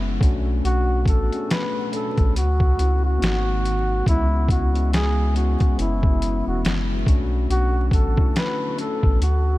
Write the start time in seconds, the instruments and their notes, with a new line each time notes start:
Already playing: sub bass F#1, string machine E3 G#3 B3 F#4, tine electric piano G#3 B3 C#4 E4
0.20 sub bass B1, string machine B2 A3 B3, tine electric piano A3 C#4 D4 F#4, kick, closed hi-hat
0.64 sub bass B1, muted trumpet F#4, closed hi-hat
1.06 sub bass A1, muted trumpet A4, kick, closed hi-hat
1.32 tine electric piano A3 C#4 D4 G#4, closed hi-hat
1.51 muted trumpet B4, snare, closed hi-hat
1.91 tine electric piano A3 C#4 D4 A4, muted trumpet A4, closed hi-hat
2.17 sub bass A1, kick, closed hi-hat
2.35 sub bass D2, string machine C#4, muted trumpet F#4, closed hi-hat
2.60 kick
2.77 sub bass C#2, tine electric piano A3 C#4 E4 F#4, closed hi-hat
3.05 muted trumpet F#4
3.18 sub bass G#1, string machine D#3 G#3 C4, tine electric piano A#3 B3 D#4 F#4
3.22 tine electric piano C4, snare, closed hi-hat
3.65 closed hi-hat
4.06 sub bass C#2, string machine C#3 G#3 B3 E4, tine electric piano G#3 B3 C#4 E4, muted trumpet E4, kick, closed hi-hat
4.49 muted trumpet F#4, kick, closed hi-hat
4.73 tine electric piano G#3 B3 C#4, closed hi-hat
4.93 muted trumpet G#4, snare, closed hi-hat
5.34 tine electric piano G#3 B3 C#4 F#4, muted trumpet F#4, closed hi-hat
5.60 kick, closed hi-hat
5.75 sub bass F#1, string machine E3 G#3 F#4, tine electric piano G#3 B3 C#4 E4, closed hi-hat
5.80 muted trumpet E4
6.03 kick
6.22 closed hi-hat
6.46 sub bass E1, muted trumpet F#4
6.64 sub bass F#1, snare, closed hi-hat
7.05 sub bass B1, string machine D3 A4, tine electric piano A3 C#4 D4 F#4, kick, closed hi-hat
7.49 sub bass B1, muted trumpet F#4, closed hi-hat
7.91 sub bass A1, muted trumpet A4, kick, closed hi-hat
8.17 tine electric piano A3 C#4 D4 E4, kick
8.36 muted trumpet B4, snare, closed hi-hat
8.77 tine electric piano A3 C#4 D4 A4, muted trumpet A4, closed hi-hat
9.03 sub bass A1, kick
9.21 sub bass D2, string machine D3 C#4, muted trumpet F#4, closed hi-hat